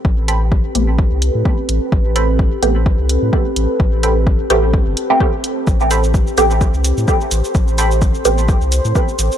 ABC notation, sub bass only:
X:1
M:4/4
L:1/16
Q:"Swing 16ths" 1/4=128
K:Am
V:1 name="Sub bass" clef=bass
A,,,4- A,,, z A,,,3 C,,2 A,, z2 A,,, z | A,,,4- A,,, z A,,,3 C,,2 A,, z2 A,,, z | A,,,4- A,,, z A,,,3 G,,, z6 | A,,,4- A,,, z A,,,3 C,,2 A,, z2 A,,, z |
A,,,4- A,,, z A,,,3 C,,2 A,, z2 A,,, z |]